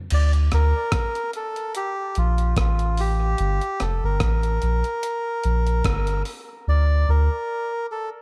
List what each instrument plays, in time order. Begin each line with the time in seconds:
0.10 sub bass D2, melodica D5, closed hi-hat, crash
0.33 closed hi-hat
0.52 sub bass D2, melodica A#4, cross-stick, closed hi-hat
0.92 kick, cross-stick, closed hi-hat
1.15 closed hi-hat
1.33 melodica A4, closed hi-hat
1.56 closed hi-hat
1.75 melodica G4, closed hi-hat
2.15 sub bass A#1, melodica F4, closed hi-hat
2.38 closed hi-hat
2.57 sub bass A1, melodica F4, kick, cross-stick, closed hi-hat
2.79 closed hi-hat
2.97 melodica G4, open hi-hat
3.38 sub bass G1, closed hi-hat
3.61 closed hi-hat
3.80 sub bass F1, melodica A4, cross-stick, closed hi-hat
4.03 sub bass G1, melodica A#4
4.20 sub bass A1, kick, cross-stick, closed hi-hat
4.43 closed hi-hat
4.62 sub bass A#1, closed hi-hat
4.84 closed hi-hat
5.03 closed hi-hat
5.44 sub bass A#1, closed hi-hat
5.67 closed hi-hat
5.84 sub bass G1, kick, cross-stick, closed hi-hat
6.07 closed hi-hat
6.25 open hi-hat
6.67 sub bass D2, melodica D5
7.08 sub bass D2, melodica A#4
7.92 melodica A4